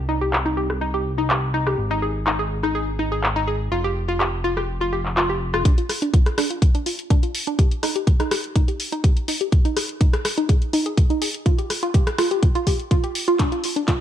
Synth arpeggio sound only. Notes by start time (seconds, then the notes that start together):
0.09 D#4
0.21 G4
0.46 D#4
0.57 G4
0.81 D#4
0.94 G4
1.18 D#4
1.30 G4
1.54 D#4
1.67 G4
1.91 D#4
2.02 G#4
2.27 D#4
2.39 G#4
2.63 D#4
2.75 G#4
2.99 D#4
3.12 G#4
3.36 D#4
3.47 G#4
3.72 F4
3.84 G4
4.09 F4
4.20 G4
4.44 F4
4.57 G4
4.81 F4
4.93 G4
5.17 F4
5.30 G4
5.54 F4
5.65 D4
5.78 F4
6.02 D4
6.14 F4
6.38 D4
6.50 F4
6.75 D4
6.86 F4
7.10 D4
7.23 F4
7.47 D4
7.59 G4
7.83 D#4
7.96 G4
8.20 D#4
8.31 G4
8.56 D#4
8.68 G4
8.92 D#4
9.04 G4
9.28 D#4
9.41 G4
9.65 D#4
9.77 G#4
10.01 D#4
10.13 G#4
10.38 D#4
10.49 G#4
10.73 D#4
10.86 G#4
11.10 D#4
11.22 G#4
11.46 F4
11.59 G4
11.83 F4
11.94 G4
12.18 F4
12.31 G4
12.55 F4
12.67 G4
12.91 F4
13.04 G4
13.28 F4
13.39 D4
13.52 F4
13.76 D4
13.88 F4